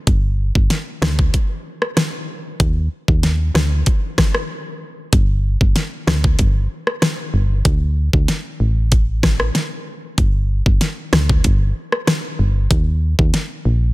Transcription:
0.07 0.52 G1 loud
0.07 kick loud
0.07 closed hi-hat medium
0.55 0.69 G1 loud
0.55 kick medium
0.70 snare medium
0.70 closed hi-hat medium
1.02 1.30 D2 medium
1.02 cross-stick medium
1.02 snare loud
1.19 kick loud
1.34 kick medium
1.34 closed hi-hat medium
1.82 cross-stick medium
1.97 cross-stick medium
1.97 snare loud
1.97 closed hi-hat medium
2.60 2.89 D#2 loud
2.60 kick loud
2.60 closed hi-hat medium
3.08 3.51 D#2 medium
3.08 kick loud
3.23 snare medium
3.23 closed hi-hat medium
3.55 3.83 D2 medium
3.55 cross-stick medium
3.55 snare loud
3.86 kick medium
3.86 closed hi-hat medium
4.18 kick medium
4.18 cross-stick medium
4.18 snare loud
4.35 cross-stick loud
5.13 5.57 G1 loud
5.13 kick loud
5.13 closed hi-hat medium
5.61 5.74 G1 medium
5.61 kick loud
5.76 snare medium
5.76 closed hi-hat medium
6.07 6.36 D2 medium
6.07 cross-stick medium
6.07 snare loud
6.24 kick loud
6.39 6.68 G1 loud
6.39 kick medium
6.39 closed hi-hat medium
6.87 cross-stick medium
7.02 cross-stick medium
7.02 snare loud
7.02 closed hi-hat medium
7.34 7.62 G1 medium
7.65 8.10 D2 loud
7.65 kick loud
7.65 closed hi-hat medium
8.13 8.27 D2 loud
8.13 kick loud
8.28 snare medium
8.28 closed hi-hat medium
8.60 9.51 A1 medium
8.92 kick medium
8.92 closed hi-hat medium
9.23 kick medium
9.23 cross-stick medium
9.23 snare loud
9.40 cross-stick loud
9.55 snare medium
9.55 closed hi-hat medium
10.18 10.62 G1 loud
10.18 kick loud
10.18 closed hi-hat medium
10.66 10.80 G1 loud
10.66 kick loud
10.81 snare medium
10.81 closed hi-hat medium
11.13 11.41 D2 medium
11.13 cross-stick loud
11.13 snare loud
11.29 kick loud
11.44 11.73 G1 loud
11.44 kick medium
11.44 closed hi-hat medium
11.92 cross-stick medium
12.07 cross-stick medium
12.07 snare loud
12.07 closed hi-hat medium
12.39 12.68 G1 medium
12.71 13.15 D#2 loud
12.71 kick loud
12.71 closed hi-hat medium
13.19 13.32 D#2 loud
13.19 kick loud
13.34 snare medium
13.34 closed hi-hat medium
13.65 13.94 A#1 loud

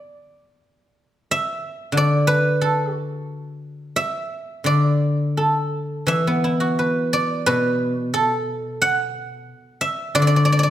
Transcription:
0.00 1.20 D5 medium
0.00 0.40 E5 medium
1.31 3.03 E5 medium
1.92 3.95 D3 soft
1.97 3.82 D5 medium
2.27 4.32 B4 medium
2.61 2.93 A4 medium
2.93 4.81 F#4 medium
3.96 5.68 E5 medium
4.64 6.78 D3 soft
4.64 6.51 D5 medium
5.37 7.57 A4 soft
6.07 8.16 E3 soft
6.07 7.80 E5 medium
6.27 7.66 B3 soft
6.44 7.83 E4 soft
6.60 7.99 F#4 soft
6.79 7.45 B4 soft
7.13 8.98 D5 medium
7.46 9.51 B2 medium
7.46 9.51 B4 medium
8.14 10.33 A4 medium
8.82 10.42 F#5 medium
9.81 10.70 E5 medium
10.15 10.70 D3 medium
10.15 10.21 D5 medium
10.22 10.27 D5 medium
10.27 10.36 D5 medium
10.36 10.45 D5 medium
10.45 10.52 D5 medium
10.52 10.59 D5 medium
10.59 10.63 D5 medium
10.63 10.70 D5 medium

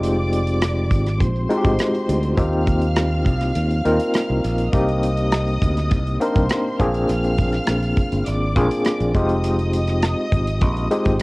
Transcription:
0.00 0.91 F1 medium
0.00 0.67 G#3 medium
0.00 0.67 C4 medium
0.00 0.68 D#4 medium
0.00 0.68 F4 medium
0.00 0.68 G4 medium
0.00 1.17 D5 medium
0.00 1.18 D6 medium
0.00 closed hi-hat medium
0.33 closed hi-hat medium
0.47 closed hi-hat soft
0.62 cross-stick loud
0.62 closed hi-hat medium
0.91 1.21 G#1 medium
0.91 kick medium
0.91 closed hi-hat medium
1.06 cross-stick soft
1.06 closed hi-hat soft
1.20 1.45 A#1 medium
1.20 2.36 C5 medium
1.20 2.36 C6 medium
1.20 kick medium
1.20 closed hi-hat medium
1.36 closed hi-hat soft
1.49 2.15 G#3 medium
1.49 2.16 C4 medium
1.49 2.16 D#4 medium
1.49 2.16 F4 medium
1.49 1.57 F#4 medium
1.49 closed hi-hat soft
1.57 2.19 G4 medium
1.65 1.77 G#1 medium
1.65 kick medium
1.65 closed hi-hat soft
1.79 cross-stick medium
1.79 closed hi-hat medium
1.95 closed hi-hat soft
2.09 2.34 D2 medium
2.09 closed hi-hat medium
2.23 closed hi-hat soft
2.37 3.26 D#2 medium
2.37 3.25 A#3 medium
2.37 3.25 C4 medium
2.37 3.26 D#4 medium
2.37 3.26 F4 medium
2.37 3.26 G4 medium
2.37 4.69 F5 medium
2.37 4.69 F6 medium
2.37 kick medium
2.37 closed hi-hat medium
2.53 closed hi-hat soft
2.67 kick medium
2.67 closed hi-hat medium
2.82 closed hi-hat soft
2.96 cross-stick loud
2.96 closed hi-hat medium
3.26 3.51 C2 medium
3.26 kick medium
3.26 closed hi-hat medium
3.41 cross-stick soft
3.41 closed hi-hat soft
3.55 3.80 D#2 medium
3.55 closed hi-hat medium
3.71 closed hi-hat soft
3.85 3.98 D#2 medium
3.85 4.50 A#3 medium
3.85 4.51 C4 medium
3.85 4.51 D#4 medium
3.85 4.51 F4 medium
3.85 4.51 A#4 medium
3.85 closed hi-hat medium
4.00 closed hi-hat soft
4.14 cross-stick medium
4.14 closed hi-hat medium
4.30 4.42 C2 medium
4.44 4.69 A#1 medium
4.44 closed hi-hat medium
4.58 closed hi-hat soft
4.72 5.58 C2 medium
4.72 5.60 A#3 medium
4.72 5.61 C4 medium
4.72 5.61 D#4 medium
4.72 5.61 G4 medium
4.72 6.17 D#5 medium
4.72 6.17 D#6 medium
4.72 kick loud
4.72 closed hi-hat medium
4.89 closed hi-hat soft
5.03 closed hi-hat medium
5.17 closed hi-hat soft
5.32 cross-stick loud
5.32 closed hi-hat medium
5.48 closed hi-hat soft
5.62 5.92 D2 medium
5.62 kick medium
5.62 closed hi-hat medium
5.77 cross-stick soft
5.77 closed hi-hat soft
5.91 6.16 C2 medium
5.91 kick medium
5.91 closed hi-hat medium
6.07 closed hi-hat soft
6.20 6.78 A#3 medium
6.20 6.79 C4 medium
6.20 6.79 D4 medium
6.20 6.80 D#4 medium
6.20 6.80 A#4 medium
6.20 6.79 C5 medium
6.20 6.79 C6 medium
6.20 closed hi-hat medium
6.35 6.48 C2 medium
6.35 kick medium
6.35 closed hi-hat soft
6.49 cross-stick medium
6.49 closed hi-hat medium
6.79 7.04 A#1 medium
6.79 7.73 A#3 medium
6.79 7.74 C4 medium
6.79 7.74 D4 medium
6.79 7.74 F4 medium
6.79 7.74 G#4 medium
6.79 8.24 F5 medium
6.79 8.24 F6 medium
6.79 kick medium
6.79 closed hi-hat medium
6.94 closed hi-hat soft
7.09 7.58 A#1 medium
7.09 closed hi-hat medium
7.24 closed hi-hat soft
7.38 kick medium
7.38 closed hi-hat medium
7.52 cross-stick soft
7.52 closed hi-hat soft
7.67 7.92 A#1 medium
7.67 cross-stick medium
7.67 closed hi-hat medium
7.82 closed hi-hat soft
7.97 kick medium
7.97 closed hi-hat medium
8.12 8.24 G1 medium
8.12 closed hi-hat soft
8.26 8.56 G#1 medium
8.26 9.13 D5 medium
8.26 9.13 D6 medium
8.26 closed hi-hat medium
8.55 8.68 A#1 medium
8.55 9.14 A#3 medium
8.55 9.14 C4 medium
8.55 9.15 D4 medium
8.55 9.15 F4 medium
8.55 9.15 G#4 medium
8.55 kick medium
8.55 closed hi-hat medium
8.71 closed hi-hat medium
8.85 cross-stick medium
8.85 closed hi-hat medium
9.00 9.13 A#1 medium
9.00 closed hi-hat soft
9.13 10.14 F1 medium
9.13 10.09 G#3 medium
9.13 10.09 C4 medium
9.13 10.09 D#4 medium
9.13 10.09 F4 medium
9.13 10.10 G4 medium
9.13 11.16 D#5 medium
9.13 11.16 D#6 medium
9.13 kick medium
9.13 closed hi-hat medium
9.29 closed hi-hat soft
9.44 closed hi-hat medium
9.59 closed hi-hat soft
9.73 closed hi-hat medium
9.87 cross-stick soft
9.87 closed hi-hat soft
10.02 cross-stick loud
10.02 closed hi-hat medium
10.32 10.62 G#1 medium
10.32 kick medium
10.32 closed hi-hat medium
10.47 closed hi-hat soft
10.61 10.87 A#1 medium
10.61 kick medium
10.61 closed hi-hat medium
10.77 closed hi-hat soft
10.91 11.22 G#3 medium
10.91 11.22 C4 medium
10.91 11.22 D#4 medium
10.91 11.22 F4 medium
10.91 11.22 G4 medium
10.91 closed hi-hat medium
11.06 11.18 G#1 medium
11.06 kick medium
11.06 closed hi-hat medium

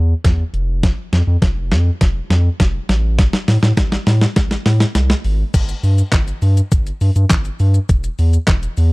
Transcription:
0.00 0.14 E2 loud
0.24 0.44 E2 medium
0.24 kick loud
0.24 snare medium
0.24 closed hi-hat medium
0.54 0.92 F1 loud
0.54 closed hi-hat medium
0.83 kick loud
0.83 snare medium
0.83 closed hi-hat medium
1.13 1.22 F2 loud
1.13 snare medium
1.13 closed hi-hat medium
1.27 1.37 F2 loud
1.42 1.73 F1 loud
1.42 kick loud
1.42 snare medium
1.42 closed hi-hat medium
1.71 1.90 F2 loud
1.71 snare loud
1.71 closed hi-hat medium
2.01 2.20 F1 loud
2.01 kick loud
2.01 snare medium
2.01 closed hi-hat medium
2.30 2.49 F2 loud
2.30 snare medium
2.30 closed hi-hat medium
2.60 2.79 F1 medium
2.60 kick loud
2.60 snare loud
2.60 closed hi-hat medium
2.89 3.27 A1 loud
2.89 snare loud
2.89 closed hi-hat medium
3.19 kick loud
3.19 snare loud
3.19 closed hi-hat medium
3.33 snare loud
3.48 3.58 A2 loud
3.48 snare loud
3.48 open hi-hat medium
3.63 3.72 A2 loud
3.63 snare loud
3.77 3.96 A1 loud
3.77 kick loud
3.77 snare loud
3.77 closed hi-hat medium
3.92 snare loud
4.07 4.26 A2 loud
4.07 snare loud
4.07 open hi-hat medium
4.21 snare loud
4.36 4.55 A1 loud
4.36 kick loud
4.36 snare loud
4.36 closed hi-hat loud
4.51 snare loud
4.66 4.85 A2 loud
4.66 snare loud
4.66 open hi-hat medium
4.80 snare loud
4.95 5.14 C2 medium
4.95 snare loud
4.95 closed hi-hat medium
5.10 snare loud
5.24 5.44 G#1 loud
5.24 open hi-hat medium
5.54 5.73 G1 loud
5.54 kick loud
5.54 closed hi-hat medium
5.54 crash loud
5.54 shaker medium
5.69 closed hi-hat medium
5.69 shaker medium
5.83 6.02 G2 loud
5.83 open hi-hat medium
5.83 shaker medium
5.98 closed hi-hat soft
5.98 shaker medium
6.12 6.32 G1 loud
6.12 kick loud
6.12 snare medium
6.12 clap loud
6.12 closed hi-hat medium
6.12 shaker medium
6.28 closed hi-hat soft
6.28 shaker soft
6.42 6.61 G2 loud
6.42 open hi-hat medium
6.42 shaker medium
6.57 closed hi-hat medium
6.57 shaker medium
6.72 6.91 G1 loud
6.72 kick loud
6.72 closed hi-hat loud
6.72 shaker medium
6.87 closed hi-hat medium
6.87 shaker medium
7.01 7.11 G2 loud
7.01 open hi-hat medium
7.01 shaker medium
7.16 7.25 G2 loud
7.16 closed hi-hat medium
7.16 shaker medium
7.30 7.50 G1 loud
7.30 kick loud
7.30 snare loud
7.30 clap loud
7.30 closed hi-hat medium
7.30 shaker medium
7.45 closed hi-hat medium
7.45 shaker medium
7.60 7.79 G2 loud
7.60 open hi-hat medium
7.60 shaker medium
7.74 closed hi-hat medium
7.74 shaker medium
7.89 8.08 E1 loud
7.89 kick loud
7.89 closed hi-hat medium
7.89 shaker medium
8.04 closed hi-hat medium
8.04 shaker medium
8.19 8.38 E2 loud
8.19 open hi-hat medium
8.19 shaker medium
8.33 closed hi-hat soft
8.33 shaker medium
8.47 8.67 E1 loud
8.47 kick loud
8.47 snare medium
8.47 clap loud
8.47 closed hi-hat medium
8.47 shaker medium
8.63 closed hi-hat soft
8.63 shaker soft
8.77 8.93 E2 loud
8.77 open hi-hat medium
8.77 shaker medium

